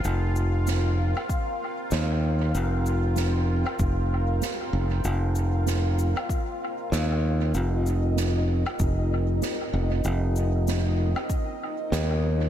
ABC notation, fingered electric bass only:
X:1
M:4/4
L:1/8
Q:"Swing 16ths" 1/4=96
K:Cm
V:1 name="Fingered electric bass" clef=bass
F,,,3 z3 E,,2 | F,,,3 z F,,,2 z F,,, | F,,,3 z3 E,,2 | F,,,3 z F,,,2 z F,,, |
F,,,3 z3 E,,2 |]